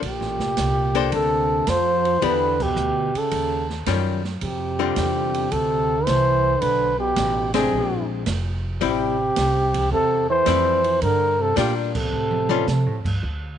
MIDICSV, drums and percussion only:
0, 0, Header, 1, 2, 480
1, 0, Start_track
1, 0, Tempo, 550206
1, 14, Time_signature, 4, 2, 24, 8
1, 11848, End_track
2, 0, Start_track
2, 0, Title_t, "Drums"
2, 20, Note_on_c, 9, 36, 25
2, 22, Note_on_c, 9, 51, 58
2, 107, Note_off_c, 9, 36, 0
2, 109, Note_off_c, 9, 51, 0
2, 185, Note_on_c, 9, 38, 28
2, 272, Note_off_c, 9, 38, 0
2, 344, Note_on_c, 9, 38, 47
2, 431, Note_off_c, 9, 38, 0
2, 495, Note_on_c, 9, 44, 67
2, 495, Note_on_c, 9, 51, 62
2, 498, Note_on_c, 9, 38, 69
2, 500, Note_on_c, 9, 36, 20
2, 582, Note_off_c, 9, 44, 0
2, 582, Note_off_c, 9, 51, 0
2, 585, Note_off_c, 9, 38, 0
2, 587, Note_off_c, 9, 36, 0
2, 826, Note_on_c, 9, 51, 48
2, 913, Note_off_c, 9, 51, 0
2, 977, Note_on_c, 9, 51, 65
2, 980, Note_on_c, 9, 36, 24
2, 1064, Note_off_c, 9, 51, 0
2, 1067, Note_off_c, 9, 36, 0
2, 1455, Note_on_c, 9, 44, 51
2, 1455, Note_on_c, 9, 51, 65
2, 1457, Note_on_c, 9, 38, 66
2, 1460, Note_on_c, 9, 36, 19
2, 1542, Note_off_c, 9, 44, 0
2, 1542, Note_off_c, 9, 51, 0
2, 1545, Note_off_c, 9, 38, 0
2, 1547, Note_off_c, 9, 36, 0
2, 1789, Note_on_c, 9, 51, 45
2, 1876, Note_off_c, 9, 51, 0
2, 1938, Note_on_c, 9, 51, 61
2, 1939, Note_on_c, 9, 36, 24
2, 2025, Note_off_c, 9, 51, 0
2, 2026, Note_off_c, 9, 36, 0
2, 2268, Note_on_c, 9, 49, 77
2, 2269, Note_on_c, 9, 36, 84
2, 2356, Note_off_c, 9, 36, 0
2, 2356, Note_off_c, 9, 49, 0
2, 2412, Note_on_c, 9, 44, 52
2, 2500, Note_off_c, 9, 44, 0
2, 2749, Note_on_c, 9, 51, 50
2, 2836, Note_off_c, 9, 51, 0
2, 2890, Note_on_c, 9, 51, 66
2, 2895, Note_on_c, 9, 36, 26
2, 2978, Note_off_c, 9, 51, 0
2, 2982, Note_off_c, 9, 36, 0
2, 3226, Note_on_c, 9, 38, 32
2, 3313, Note_off_c, 9, 38, 0
2, 3370, Note_on_c, 9, 44, 58
2, 3370, Note_on_c, 9, 51, 66
2, 3373, Note_on_c, 9, 38, 64
2, 3375, Note_on_c, 9, 36, 21
2, 3457, Note_off_c, 9, 44, 0
2, 3457, Note_off_c, 9, 51, 0
2, 3460, Note_off_c, 9, 38, 0
2, 3462, Note_off_c, 9, 36, 0
2, 3701, Note_on_c, 9, 38, 35
2, 3789, Note_off_c, 9, 38, 0
2, 3849, Note_on_c, 9, 51, 59
2, 3853, Note_on_c, 9, 36, 23
2, 3936, Note_off_c, 9, 51, 0
2, 3940, Note_off_c, 9, 36, 0
2, 4328, Note_on_c, 9, 44, 57
2, 4328, Note_on_c, 9, 51, 68
2, 4331, Note_on_c, 9, 38, 68
2, 4333, Note_on_c, 9, 36, 20
2, 4415, Note_off_c, 9, 44, 0
2, 4415, Note_off_c, 9, 51, 0
2, 4418, Note_off_c, 9, 38, 0
2, 4420, Note_off_c, 9, 36, 0
2, 4661, Note_on_c, 9, 51, 51
2, 4748, Note_off_c, 9, 51, 0
2, 4812, Note_on_c, 9, 51, 62
2, 4814, Note_on_c, 9, 36, 26
2, 4899, Note_off_c, 9, 51, 0
2, 4901, Note_off_c, 9, 36, 0
2, 5293, Note_on_c, 9, 44, 54
2, 5293, Note_on_c, 9, 51, 63
2, 5294, Note_on_c, 9, 36, 20
2, 5296, Note_on_c, 9, 38, 67
2, 5381, Note_off_c, 9, 36, 0
2, 5381, Note_off_c, 9, 44, 0
2, 5381, Note_off_c, 9, 51, 0
2, 5383, Note_off_c, 9, 38, 0
2, 5772, Note_on_c, 9, 51, 59
2, 5773, Note_on_c, 9, 36, 24
2, 5859, Note_off_c, 9, 51, 0
2, 5861, Note_off_c, 9, 36, 0
2, 6248, Note_on_c, 9, 44, 61
2, 6248, Note_on_c, 9, 51, 65
2, 6251, Note_on_c, 9, 36, 17
2, 6251, Note_on_c, 9, 38, 69
2, 6335, Note_off_c, 9, 44, 0
2, 6335, Note_off_c, 9, 51, 0
2, 6338, Note_off_c, 9, 38, 0
2, 6339, Note_off_c, 9, 36, 0
2, 6575, Note_on_c, 9, 51, 71
2, 6578, Note_on_c, 9, 38, 85
2, 6662, Note_off_c, 9, 51, 0
2, 6665, Note_off_c, 9, 38, 0
2, 7206, Note_on_c, 9, 44, 64
2, 7206, Note_on_c, 9, 51, 65
2, 7208, Note_on_c, 9, 38, 72
2, 7212, Note_on_c, 9, 36, 23
2, 7293, Note_off_c, 9, 44, 0
2, 7293, Note_off_c, 9, 51, 0
2, 7296, Note_off_c, 9, 38, 0
2, 7299, Note_off_c, 9, 36, 0
2, 7687, Note_on_c, 9, 51, 61
2, 7691, Note_on_c, 9, 36, 18
2, 7774, Note_off_c, 9, 51, 0
2, 7778, Note_off_c, 9, 36, 0
2, 8167, Note_on_c, 9, 44, 59
2, 8167, Note_on_c, 9, 51, 76
2, 8169, Note_on_c, 9, 38, 71
2, 8171, Note_on_c, 9, 36, 21
2, 8254, Note_off_c, 9, 44, 0
2, 8254, Note_off_c, 9, 51, 0
2, 8257, Note_off_c, 9, 38, 0
2, 8258, Note_off_c, 9, 36, 0
2, 8499, Note_on_c, 9, 51, 75
2, 8501, Note_on_c, 9, 36, 60
2, 8586, Note_off_c, 9, 51, 0
2, 8588, Note_off_c, 9, 36, 0
2, 8650, Note_on_c, 9, 36, 21
2, 8738, Note_off_c, 9, 36, 0
2, 9125, Note_on_c, 9, 44, 55
2, 9125, Note_on_c, 9, 51, 69
2, 9127, Note_on_c, 9, 38, 71
2, 9129, Note_on_c, 9, 36, 26
2, 9212, Note_off_c, 9, 44, 0
2, 9212, Note_off_c, 9, 51, 0
2, 9215, Note_off_c, 9, 38, 0
2, 9217, Note_off_c, 9, 36, 0
2, 9458, Note_on_c, 9, 51, 49
2, 9546, Note_off_c, 9, 51, 0
2, 9610, Note_on_c, 9, 51, 62
2, 9611, Note_on_c, 9, 36, 25
2, 9697, Note_off_c, 9, 51, 0
2, 9698, Note_off_c, 9, 36, 0
2, 10091, Note_on_c, 9, 44, 62
2, 10091, Note_on_c, 9, 51, 70
2, 10092, Note_on_c, 9, 36, 27
2, 10093, Note_on_c, 9, 38, 71
2, 10178, Note_off_c, 9, 44, 0
2, 10178, Note_off_c, 9, 51, 0
2, 10179, Note_off_c, 9, 36, 0
2, 10180, Note_off_c, 9, 38, 0
2, 10424, Note_on_c, 9, 49, 83
2, 10425, Note_on_c, 9, 36, 89
2, 10511, Note_off_c, 9, 49, 0
2, 10513, Note_off_c, 9, 36, 0
2, 10738, Note_on_c, 9, 48, 57
2, 10826, Note_off_c, 9, 48, 0
2, 10895, Note_on_c, 9, 48, 76
2, 10982, Note_off_c, 9, 48, 0
2, 11057, Note_on_c, 9, 44, 55
2, 11059, Note_on_c, 9, 38, 53
2, 11144, Note_off_c, 9, 44, 0
2, 11147, Note_off_c, 9, 38, 0
2, 11389, Note_on_c, 9, 36, 75
2, 11390, Note_on_c, 9, 49, 73
2, 11476, Note_off_c, 9, 36, 0
2, 11477, Note_off_c, 9, 49, 0
2, 11539, Note_on_c, 9, 36, 25
2, 11626, Note_off_c, 9, 36, 0
2, 11848, End_track
0, 0, End_of_file